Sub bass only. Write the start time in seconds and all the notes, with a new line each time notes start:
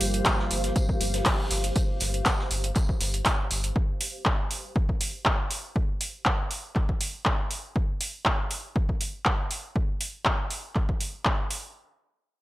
0.01 G1
0.51 G1
1.01 G1
1.51 G1
2.01 G1
2.51 G1
3.01 G1
3.51 G1